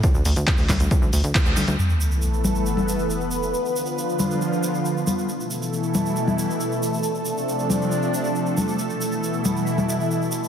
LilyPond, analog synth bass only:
\new Staff \with { instrumentName = "Analog synth bass" } { \clef bass \time 4/4 \key a \minor \tempo 4 = 137 r16 d,16 d,16 d,16 r16 d,16 d,16 d,16 r16 d,16 d,16 d,16 r16 d,16 d,16 d,16 | r1 | r1 | r1 |
r1 | r1 | }